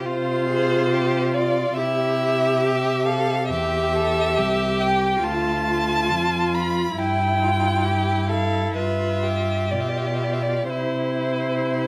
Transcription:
0.03 cello C3, viola F4, violin F4 C5
0.48 violin G#4
0.91 violin G4
1.34 violin F4 D5
1.76 cello C3, violin E4 E5, viola G4
2.64 violin G4
3.06 violin A4 F5
3.49 cello E2, viola G4, violin G4 E5
3.95 violin A4
4.38 cello C2, violin G4
4.80 violin G5
5.23 cello D2, violin F4 A5, viola F4
5.67 violin F4
6.10 cello F2
6.54 violin B5
6.97 cello G2, violin E4 G5, viola E4
7.42 violin F4
7.85 violin G4
8.29 violin A4 F5
8.75 cello G2, viola F4, violin B4 E5
9.23 violin G4
9.71 cello B2, viola F4, violin D5
9.80 violin E5
9.88 violin D5
9.97 violin E5
10.07 violin D5
10.15 violin E5
10.24 violin D5
10.33 violin E5
10.42 violin D5
10.69 cello C3, violin E4 C5, viola E4
11.71 violin E4

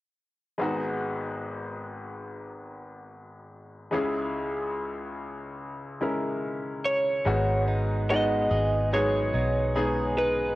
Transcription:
0.58 grand piano G#1 G#2 G#3 B3 D#4 F#4
3.91 grand piano C#2 C#3 G#3 C#4 E4 G#4
6.01 grand piano G#3 C#4 E4 A#4
6.85 lead electric guitar C#5
7.25 fingered electric bass G#1, grand piano G#2 G#3 B3 D#4 F#4, clean electric guitar G#2
7.68 clean electric guitar D#4
8.09 grand piano G#3 B3 D#4 F#4, clean electric guitar B3, lead electric guitar D#5
8.51 fingered electric bass G#1, clean electric guitar G#4
8.93 clean electric guitar F#3, grand piano G#3 B3 D#4 G#4, lead electric guitar C#5
9.34 fingered electric bass B1, clean electric guitar D#4
9.76 grand piano G#3 B3 D#4 G#4, clean electric guitar G#4
10.17 clean electric guitar D#4, lead electric guitar B4

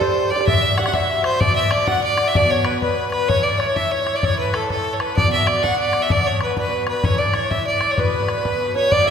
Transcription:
0.00 bouzouki G2 D3 A3 G4, violin C5, accordion C5, five-string banjo C5, bodhran
0.30 bouzouki D3 A3 G4, violin D5, accordion D5, five-string banjo D5
0.36 five-string banjo D5
0.41 five-string banjo D5
0.47 bouzouki B2 G3 E4 F#4, violin E5, accordion E5, five-string banjo E5, bodhran
0.77 accordion F#5, violin F#5, five-string banjo F#5, bodhran
0.85 violin F#5, accordion F#5, five-string banjo F#5, bodhran
0.93 bouzouki B2 G3 E4 F#4, violin E5, accordion E5, five-string banjo E5, bodhran
1.24 violin C5, accordion C5, bodhran
1.40 bouzouki B2 D3 B3 F#4, violin D5, accordion D5, bodhran
1.56 violin E5, accordion E5
1.71 violin D5, accordion D5, bodhran
1.87 bouzouki B2 D3 B3 F#4, violin F#5, accordion F#5, bodhran
2.02 accordion D5, violin D5
2.17 bodhran
2.27 accordion E5, violin E5
2.34 bouzouki B2 D3 B3 F#4, accordion D5, violin D5, bodhran
2.50 accordion C#5, violin C#5
2.64 violin B4, accordion B4, bodhran
2.82 bouzouki B2 D3 B3 F#4, violin B4, accordion B4, bodhran
3.11 violin B4, accordion B4, bodhran
3.28 bouzouki A2 E3 C#4 E4, violin C#5, accordion C#5, bodhran
3.43 accordion D5, violin D5
3.58 violin C#5, accordion C#5, bodhran
3.75 bouzouki A2 E3 C#4 E4, accordion E5, violin E5, bodhran
3.90 accordion C#5, violin C#5
4.07 bodhran
4.14 accordion D5, violin D5
4.22 bouzouki A2 E3 C#4 E4, accordion C#5, violin C#5, bodhran
4.38 violin B4, accordion B4
4.53 violin A4, accordion A4, bodhran
4.68 bouzouki A2 E3 C#4 E4, accordion A4, violin A4, bodhran
4.93 violin C#5
5.00 violin B4, accordion B4, bodhran
5.16 bouzouki B2 D3 B3 F#4, violin D5, accordion D5, bodhran
5.32 violin E5, accordion E5
5.47 violin D5, accordion D5, bodhran
5.62 bouzouki B2 D3 B3 F#4, violin F#5, accordion F#5, bodhran
5.79 violin D5
5.93 bodhran
6.02 violin E5, accordion E5
6.09 bouzouki B2 D3 B3 F#4, violin D5, accordion D5, bodhran
6.26 violin C#5, accordion C#5
6.41 accordion B4, violin B4, bodhran
6.56 bouzouki B2 D3 B3 F#4, violin B4, accordion B4, bodhran
6.87 accordion B4, violin B4, bodhran
7.03 bouzouki A2 E3 C#4 E4, accordion C#5, violin C#5, bodhran
7.18 accordion D5, violin D5
7.33 accordion C#5, violin C#5, bodhran
7.50 bouzouki A2 E3 E4, accordion E5, violin E5, bodhran
7.66 accordion D5, violin D5
7.81 bodhran
7.91 violin C#5
7.97 bouzouki B2 D3 B3 F#4, accordion B4, violin B4, bodhran
8.28 bodhran
8.43 bouzouki B2 D3 B3 F#4, bodhran
8.74 accordion C#5, five-string banjo C#5, violin C#5
8.90 bouzouki B2 D3 B3 F#4, accordion D5, violin D5, five-string banjo D5, bodhran
9.05 accordion E5, five-string banjo E5

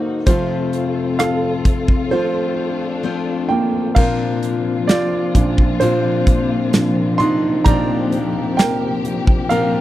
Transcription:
Already playing: grand piano D#3 F#3 A#3 D#4 F#4 A4 C5 D#5 F5, steel-string acoustic guitar D#3 A#3 D#4 F#4, string section A#3 D#4 F#4
0.26 steel-string acoustic guitar F2 C3 F3 A3 C4 F4, grand piano F3 C4 F4 C5, string section C4 F4 A4, kick, closed hi-hat
0.73 closed hi-hat
1.19 grand piano A4 F5, cross-stick, closed hi-hat
1.65 kick, closed hi-hat
1.88 kick
2.11 steel-string acoustic guitar F3 A3 C4 F4, string section D4, grand piano F4 C5
3.03 steel-string acoustic guitar F3 A3 C4 F4
3.49 grand piano A#3 G5
3.95 steel-string acoustic guitar A#2 F3 C4 D4 F4, string section C3 F3 A#3 C4 F4, grand piano A#4 F5, kick, crash
4.43 closed hi-hat
4.87 steel-string acoustic guitar F3 C4 D4 F4, grand piano F4 D5, snare, closed hi-hat
5.34 grand piano A#2 F3 D4, kick, closed hi-hat
5.58 kick
5.80 steel-string acoustic guitar A#2 F3 C4 D4 F4, grand piano F4 C5, closed hi-hat
6.27 kick, closed hi-hat
6.73 grand piano A#2 F3 D4, snare, closed hi-hat
7.18 steel-string acoustic guitar C4 D4 F4, grand piano D#4 C6, closed hi-hat
7.64 steel-string acoustic guitar A#2 F3 C4 D4 F4, grand piano A#2 F3 D4 D5 A#5, string section G4, kick, closed hi-hat
8.12 closed hi-hat
8.57 grand piano A#4 G5, snare, closed hi-hat
9.05 closed hi-hat
9.27 kick
9.49 steel-string acoustic guitar A#2 F3 C4 D4 F4, grand piano A#4 F5, closed hi-hat

